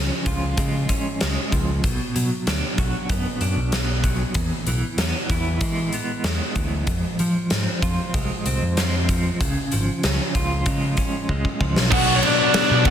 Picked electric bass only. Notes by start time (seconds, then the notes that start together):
0.26 C#2
0.58 C#3
1.22 C#2
1.52 C#2
1.84 B1
2.16 B2
2.47 D2
2.78 B1
3.10 F#2
3.41 F#2
3.56 B1
4.35 E2
4.67 B1
4.98 E2
5.30 E2
5.61 E3
6.24 E2
6.56 D2
6.88 F2
7.20 F3
7.51 G#2
7.83 F2
8.15 C2
8.46 C2
8.62 F2
9.41 C#2
9.73 G#1
10.05 C#2
10.35 C#2
10.66 C#3
11.29 C#2
11.61 C#2
11.77 B1
11.92 B1
12.71 B2
12.86 F#2